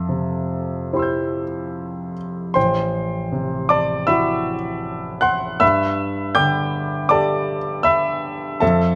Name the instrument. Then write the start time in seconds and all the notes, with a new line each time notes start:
grand piano
Already playing: F2 A4 E5 A5
0.09 C3
0.93 E4 G4 C5 C6
0.99 E6 G6
2.54 A1 C5 G5 C6
3.32 C3
3.69 D5 A5 D6
4.07 E4 F#4 E5 B5 E6
5.21 F#5 C6 F#6
5.60 G2 E5 B5 E6
6.35 D3 G5 D6 G6
7.09 G4 A4 D5 A5 D6
7.83 E5 B5 E6
8.60 F2 A4 E5 A5